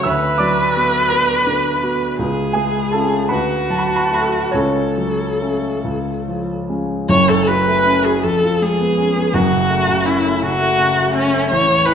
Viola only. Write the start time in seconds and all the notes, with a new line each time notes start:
0.07 B4
2.20 G#4
3.31 F#4
4.54 A4
7.09 C#5
7.28 A4
7.47 B4
8.05 G#4
8.23 A4
8.62 G#4
9.33 F#4
10.06 E4
10.42 F#4
11.14 C#4
11.50 C#5
11.85 B4